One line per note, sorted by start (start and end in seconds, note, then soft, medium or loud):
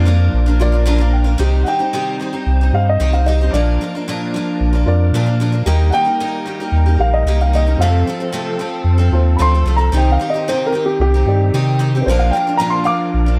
0.00 0.29 F2 loud
0.00 1.35 F3 medium
0.00 1.38 D4 medium
0.00 1.38 A#4 medium
0.00 1.11 D5 medium
0.05 0.46 F3 medium
0.05 0.47 A#3 medium
0.05 0.47 D4 medium
0.05 0.45 F4 medium
0.33 1.36 A#1 medium
0.46 0.60 A#3 medium
0.46 0.60 D4 medium
0.46 0.60 F4 medium
0.60 0.73 F3 medium
0.60 0.74 A#3 medium
0.60 0.72 D4 medium
0.60 1.09 F4 medium
0.60 0.71 F4 medium
0.60 1.09 A#4 medium
0.60 1.10 D5 loud
0.72 0.86 A#3 soft
0.72 0.86 D4 medium
0.72 0.86 F4 medium
0.86 1.00 A#2 medium
0.86 1.00 F3 medium
0.86 1.00 A#3 medium
0.86 0.99 D4 loud
0.86 0.97 F4 loud
0.86 1.12 A#5 medium
0.98 1.26 A#3 medium
0.98 1.24 D4 medium
0.98 1.23 F4 medium
1.13 1.38 G5 medium
1.24 1.39 A#3 medium
1.24 1.39 D4 medium
1.24 1.39 F4 medium
1.38 1.64 C2 loud
1.38 1.66 C3 medium
1.38 1.65 D#3 loud
1.38 1.66 C4 loud
1.38 1.67 D#4 medium
1.38 3.53 D#4 medium
1.38 1.67 G4 medium
1.38 2.05 G4 medium
1.38 3.52 C5 medium
1.38 2.06 C5 medium
1.38 2.06 D#5 medium
1.42 3.53 G3 medium
1.64 1.80 D#3 medium
1.64 1.80 C4 medium
1.64 1.67 F#5 medium
1.68 1.79 D#4 medium
1.68 1.78 G4 medium
1.68 2.71 G5 loud
1.79 1.93 C4 soft
1.79 1.94 D#4 medium
1.79 1.93 G4 medium
1.93 2.20 C3 medium
1.93 2.18 D#3 medium
1.93 2.19 C4 medium
1.93 2.21 D#4 medium
1.93 2.21 G4 medium
2.20 2.33 D#3 soft
2.20 2.33 C4 medium
2.20 2.32 D#4 medium
2.20 2.32 G4 medium
2.33 2.61 C4 soft
2.33 2.60 D#4 medium
2.33 2.60 G4 medium
2.46 2.71 C2 loud
2.61 2.99 C4 soft
2.61 2.99 D#4 soft
2.61 3.00 G4 medium
2.72 2.98 G2 medium
2.72 3.22 G4 medium
2.72 3.23 C5 medium
2.72 3.23 D#5 medium
2.72 2.87 F5 medium
2.89 3.14 D#5 medium
3.00 3.50 C2 medium
3.00 3.14 C3 medium
3.00 3.14 D#3 medium
3.00 3.14 C4 medium
3.00 3.13 D#4 medium
3.00 3.11 G4 medium
3.13 3.26 C4 soft
3.13 3.27 D#4 soft
3.13 3.27 G4 soft
3.13 3.26 F5 medium
3.26 3.40 D#3 medium
3.26 3.41 C4 medium
3.26 3.41 D#4 medium
3.26 3.40 G4 medium
3.26 3.53 D#5 medium
3.41 3.54 C4 soft
3.41 3.54 D#4 medium
3.41 3.54 G4 medium
3.51 3.78 A#1 loud
3.51 3.81 A#2 medium
3.51 5.64 F3 medium
3.51 3.80 F3 medium
3.51 5.64 D4 medium
3.51 4.18 F4 medium
3.51 7.75 A#4 medium
3.51 4.18 A#4 medium
3.51 4.57 D5 medium
3.51 4.19 D5 medium
3.55 3.80 A#3 medium
3.55 3.81 D4 medium
3.55 3.81 F4 medium
3.81 3.94 F3 medium
3.81 3.95 A#3 medium
3.81 3.95 D4 medium
3.81 3.94 F4 medium
3.95 4.08 A#3 soft
3.95 4.08 D4 soft
3.95 4.08 F4 medium
4.08 4.34 A#2 medium
4.08 4.33 F3 medium
4.08 4.35 A#3 medium
4.08 4.35 D4 medium
4.08 4.35 F4 loud
4.34 4.74 F3 medium
4.34 4.74 A#3 medium
4.34 4.74 D4 medium
4.34 4.72 F4 medium
4.60 4.85 A#1 loud
4.73 5.14 A#3 soft
4.73 5.14 D4 medium
4.73 5.14 F4 medium
4.86 5.12 F2 loud
4.86 5.35 F4 medium
4.86 5.36 A#4 medium
4.86 5.36 D5 loud
5.13 5.63 A#2 medium
5.13 5.27 A#2 medium
5.13 5.28 F3 medium
5.13 5.27 A#3 medium
5.13 5.25 D4 medium
5.13 5.25 F4 medium
5.26 5.40 A#3 soft
5.26 5.40 D4 medium
5.26 5.40 F4 medium
5.40 5.54 F3 medium
5.40 5.54 A#3 medium
5.40 5.52 D4 medium
5.40 5.51 F4 medium
5.52 5.65 A#3 soft
5.52 5.67 D4 medium
5.52 5.67 F4 medium
5.66 5.91 D#2 medium
5.66 5.91 D#3 loud
5.66 7.78 G3 medium
5.66 5.92 A#3 medium
5.66 7.78 D#4 medium
5.66 5.93 D#4 loud
5.66 6.32 G4 medium
5.66 5.94 G4 loud
5.66 6.32 A#4 medium
5.66 6.32 D#5 medium
5.90 6.07 D#3 medium
5.90 6.06 A#3 medium
5.90 5.93 F#5 medium
5.90 6.97 G5 loud
5.94 6.05 D#4 medium
5.94 6.04 G4 medium
6.05 6.19 A#3 soft
6.05 6.20 D#4 soft
6.05 6.20 G4 soft
6.20 6.44 D#3 medium
6.20 6.46 A#3 medium
6.20 6.46 D#4 medium
6.20 6.47 G4 medium
6.46 6.60 D#3 medium
6.46 6.60 A#3 medium
6.46 6.60 D#4 medium
6.46 6.59 G4 medium
6.60 6.88 A#3 soft
6.60 6.87 D#4 medium
6.60 6.85 G4 medium
6.72 6.97 D#2 loud
6.86 7.26 A#3 soft
6.86 7.27 D#4 soft
6.86 7.27 G4 medium
6.99 7.24 A#1 medium
6.99 7.48 G4 medium
6.99 7.49 A#4 medium
6.99 7.49 F5 medium
6.99 7.13 F5 medium
7.14 7.40 D#5 medium
7.25 7.76 C2 medium
7.25 7.40 D#3 medium
7.25 7.41 A#3 medium
7.25 7.40 D#4 medium
7.25 7.40 G4 medium
7.41 7.53 A#3 soft
7.41 7.54 D#4 soft
7.41 7.54 G4 medium
7.41 7.53 F5 medium
7.53 7.67 D#3 medium
7.53 7.67 A#3 medium
7.53 7.66 D#4 medium
7.53 7.65 G4 medium
7.53 7.81 D#5 medium
7.66 7.81 A#3 soft
7.66 7.81 D#4 soft
7.66 7.80 G4 soft
7.76 8.04 F2 loud
7.76 9.90 F3 medium
7.76 12.00 C4 medium
7.76 8.45 F4 medium
7.76 9.90 A4 medium
7.80 8.08 F2 medium
7.80 8.08 C3 medium
7.80 8.06 F3 medium
7.80 8.07 A3 medium
7.80 8.09 C4 medium
7.80 8.45 A4 medium
7.80 8.08 A4 medium
7.80 8.45 C5 medium
7.80 8.84 F5 medium
8.07 8.21 F3 medium
8.07 8.20 A3 medium
8.07 8.19 C4 medium
8.07 8.19 A4 medium
8.20 8.32 F3 soft
8.20 8.32 A3 soft
8.20 8.33 C4 soft
8.20 8.34 A4 medium
8.32 8.60 F2 medium
8.32 8.60 C3 medium
8.32 8.58 F3 medium
8.32 8.58 A3 medium
8.32 8.60 C4 medium
8.32 8.60 A4 medium
8.59 8.99 F3 medium
8.59 9.00 A3 medium
8.59 8.98 C4 medium
8.59 8.97 A4 medium
8.84 9.10 F2 loud
8.98 9.38 F3 soft
8.98 9.38 A3 medium
8.98 9.39 C4 medium
8.98 9.39 A4 medium
9.12 9.37 D#2 medium
9.12 9.62 F4 medium
9.12 9.62 A4 medium
9.12 9.62 C5 medium
9.37 9.64 D2 medium
9.37 9.53 F2 medium
9.37 9.53 C3 medium
9.37 9.53 F3 medium
9.37 9.53 A3 medium
9.37 9.54 C4 medium
9.37 9.40 B5 medium
9.41 9.53 A4 medium
9.41 9.76 C6 medium
9.54 9.64 F3 soft
9.54 9.66 A3 soft
9.54 9.66 C4 soft
9.54 9.67 A4 medium
9.66 9.90 C2 medium
9.66 9.80 F3 medium
9.66 9.78 A3 medium
9.66 9.78 C4 medium
9.66 9.77 A4 medium
9.76 9.93 A3 soft
9.76 9.92 C4 soft
9.76 9.93 A4 medium
9.76 9.94 A#5 medium
9.81 9.92 F3 soft
9.92 10.18 C2 loud
9.92 10.20 C3 medium
9.92 10.18 D#3 medium
9.92 12.04 D#3 medium
9.92 10.20 C4 medium
9.92 10.59 D#4 medium
9.92 10.20 D#4 medium
9.92 12.04 G4 medium
9.92 10.21 G4 medium
9.92 10.59 G4 medium
9.92 10.59 C5 medium
9.97 10.13 G5 medium
10.12 10.29 F5 medium
10.19 10.33 D#3 medium
10.19 10.34 C4 medium
10.19 10.34 D#4 medium
10.19 10.33 G4 medium
10.30 10.47 D#5 medium
10.34 10.48 C4 soft
10.34 10.48 D#4 medium
10.34 10.47 G4 medium
10.48 10.75 C3 medium
10.48 10.71 D#3 medium
10.48 10.73 C4 medium
10.48 10.74 D#4 medium
10.48 10.74 G4 medium
10.48 10.65 C5 medium
10.66 10.83 A#4 medium
10.72 11.13 D#3 medium
10.72 11.14 C4 medium
10.72 11.14 D#4 medium
10.72 11.13 G4 medium
10.86 11.00 G4 medium
10.99 11.24 C2 loud
10.99 11.53 G4 loud
11.14 11.53 C4 soft
11.14 11.54 D#4 soft
11.14 11.54 G4 medium
11.26 11.51 G2 loud
11.26 11.76 D#4 medium
11.26 11.76 G4 medium
11.26 11.76 D5 medium
11.53 12.03 C3 medium
11.53 11.80 C3 medium
11.53 11.78 D#3 medium
11.53 11.79 C4 medium
11.53 11.80 D#4 medium
11.53 11.80 G4 medium
11.79 11.93 D#3 medium
11.79 11.93 C4 medium
11.79 11.94 D#4 medium
11.79 11.94 G4 medium
11.95 12.09 C4 soft
11.95 12.08 D#4 medium
11.95 12.08 G4 medium
12.02 12.71 D4 medium
12.02 12.05 B4 medium
12.06 12.31 A#1 loud
12.06 12.34 A#2 medium
12.06 13.39 F3 medium
12.06 12.32 F3 medium
12.06 12.33 A#3 medium
12.06 13.39 D4 medium
12.06 12.72 F4 medium
12.06 13.39 A#4 medium
12.06 12.72 A#4 medium
12.06 12.19 C5 medium
12.10 12.34 D4 medium
12.10 12.35 F4 medium
12.19 12.32 F5 medium
12.31 12.47 F3 medium
12.31 12.47 A#3 medium
12.31 12.58 G5 medium
12.35 12.47 D4 medium
12.35 12.46 F4 medium
12.47 12.58 A#3 soft
12.47 12.59 D4 medium
12.47 12.60 F4 medium
12.57 12.86 A#2 medium
12.57 12.83 F3 medium
12.57 12.84 A#3 medium
12.57 12.85 D4 medium
12.57 12.85 F4 loud
12.57 12.71 A#5 loud
12.70 12.84 C6 medium
12.84 13.25 F3 medium
12.84 13.26 A#3 medium
12.84 13.26 D4 medium
12.84 13.25 F4 medium
12.84 13.39 F5 medium
12.84 13.39 D6 medium
13.14 13.38 A#1 loud
13.26 13.39 A#3 soft
13.26 13.39 D4 medium
13.26 13.39 F4 medium